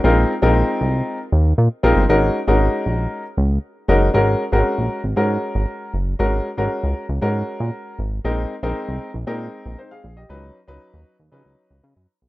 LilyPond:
<<
  \new Staff \with { instrumentName = "Grand piano" } { \time 4/4 \key aes \mixolydian \tempo 4 = 117 << { r1 | r1 | r1 | r1 |
r2. <ees' c''>16 <aes' f''>8 <g' ees''>16~ | <g' ees''>16 r2. r8. | } \\ { <aes c' ees' f' bes'>8 r16 <aes c' ees' f' bes'>4. r4 r16 <aes c' ees' f' bes'>16 r16 | <aes des' ees' ges' bes'>8 r16 <aes des' ees' ges' bes'>4. r4 r16 <aes des' ees' ges' bes'>16 r16 | <aes des' ges' bes'>8 r16 <aes c' des' ges' bes'>4 r16 <aes des' ges' bes'>4. r8 | <aes des' ges' bes'>8 r16 <aes des' ges' bes'>4 r16 <aes des' ges' bes'>4. r8 |
<aes c' ees' bes'>8 r16 <aes c' ees' bes'>4 r16 <aes c' ees' bes'>4. r8 | <ges des' ees' ces''>8 r16 <ges des' ees' ces''>4 r16 <f ges des' ees' ces''>4. r8 | } >> }
  \new Staff \with { instrumentName = "Analog synth bass" } { \clef bass \time 4/4 \key aes \mixolydian bes,,8 r16 bes,,8 r16 c,8 r8 ees,8 bes,16 r16 bes,,16 g,,16 | aes,,8 r16 aes,,8 r16 bes,,8 r8 des,8 r8 ges,,8 | aes,,8 r16 aes,,16 r16 bes,,16 r16 aes,,16 aes,8 r16 aes,,16 r8 ges,,8 | aes,,8 r16 aes,,16 r16 des,16 r16 des,16 aes,8 r16 bes,16 r8 aes,,8 |
bes,,8 r16 bes,,16 r16 c,16 r16 bes,,16 bes,8 r16 bes,,16 r8 bes,,8 | des,8 r16 des,16 r16 ees,16 r16 ees,16 des16 des,16 r16 des,16 des16 ges,16 r16 ces,16 | }
>>